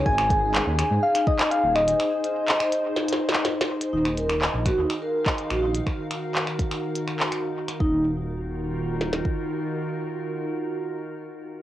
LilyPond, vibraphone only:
\new Staff \with { instrumentName = "Vibraphone" } { \time 4/4 \key ees \dorian \tempo 4 = 124 r1 | r1 | ees'16 r16 bes'16 r16 ees''16 r16 ges'16 ees'16 r16 bes'16 r16 ees''16 r16 ges'16 ees'16 r16 | r1 |
ees'8 r2. r8 | r1 | }